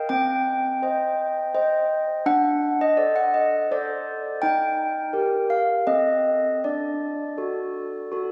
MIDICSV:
0, 0, Header, 1, 2, 480
1, 0, Start_track
1, 0, Tempo, 720288
1, 56, Time_signature, 3, 2, 24, 8
1, 3417, Tempo, 749064
1, 5462, End_track
2, 0, Start_track
2, 0, Title_t, "Handbells"
2, 0, Program_c, 0, 14
2, 61, Note_on_c, 0, 79, 127
2, 63, Note_on_c, 0, 60, 80
2, 520, Note_off_c, 0, 60, 0
2, 549, Note_on_c, 0, 72, 53
2, 553, Note_on_c, 0, 75, 58
2, 992, Note_off_c, 0, 72, 0
2, 994, Note_off_c, 0, 75, 0
2, 1030, Note_on_c, 0, 72, 62
2, 1030, Note_on_c, 0, 75, 66
2, 1464, Note_off_c, 0, 79, 0
2, 1472, Note_off_c, 0, 72, 0
2, 1472, Note_off_c, 0, 75, 0
2, 1505, Note_on_c, 0, 62, 80
2, 1508, Note_on_c, 0, 78, 104
2, 1844, Note_off_c, 0, 78, 0
2, 1875, Note_on_c, 0, 75, 97
2, 1962, Note_off_c, 0, 62, 0
2, 1981, Note_off_c, 0, 75, 0
2, 1981, Note_on_c, 0, 74, 85
2, 1986, Note_on_c, 0, 72, 52
2, 1988, Note_on_c, 0, 69, 50
2, 2093, Note_off_c, 0, 74, 0
2, 2103, Note_on_c, 0, 78, 93
2, 2213, Note_off_c, 0, 78, 0
2, 2225, Note_on_c, 0, 75, 82
2, 2425, Note_off_c, 0, 72, 0
2, 2426, Note_off_c, 0, 69, 0
2, 2444, Note_off_c, 0, 75, 0
2, 2474, Note_on_c, 0, 69, 58
2, 2477, Note_on_c, 0, 72, 63
2, 2478, Note_on_c, 0, 74, 83
2, 2922, Note_off_c, 0, 69, 0
2, 2924, Note_off_c, 0, 72, 0
2, 2932, Note_off_c, 0, 74, 0
2, 2943, Note_on_c, 0, 79, 108
2, 2952, Note_on_c, 0, 63, 66
2, 3411, Note_off_c, 0, 63, 0
2, 3419, Note_on_c, 0, 70, 43
2, 3423, Note_on_c, 0, 67, 44
2, 3628, Note_off_c, 0, 79, 0
2, 3656, Note_on_c, 0, 77, 80
2, 3861, Note_off_c, 0, 70, 0
2, 3863, Note_off_c, 0, 67, 0
2, 3880, Note_off_c, 0, 77, 0
2, 3892, Note_on_c, 0, 60, 65
2, 3892, Note_on_c, 0, 75, 86
2, 3895, Note_on_c, 0, 69, 48
2, 4346, Note_off_c, 0, 69, 0
2, 4350, Note_off_c, 0, 75, 0
2, 4355, Note_off_c, 0, 60, 0
2, 4388, Note_on_c, 0, 74, 75
2, 4390, Note_on_c, 0, 62, 52
2, 4849, Note_off_c, 0, 62, 0
2, 4857, Note_on_c, 0, 69, 38
2, 4861, Note_on_c, 0, 66, 38
2, 5312, Note_off_c, 0, 69, 0
2, 5314, Note_off_c, 0, 66, 0
2, 5333, Note_on_c, 0, 66, 43
2, 5338, Note_on_c, 0, 69, 44
2, 5462, Note_off_c, 0, 66, 0
2, 5462, Note_off_c, 0, 69, 0
2, 5462, Note_off_c, 0, 74, 0
2, 5462, End_track
0, 0, End_of_file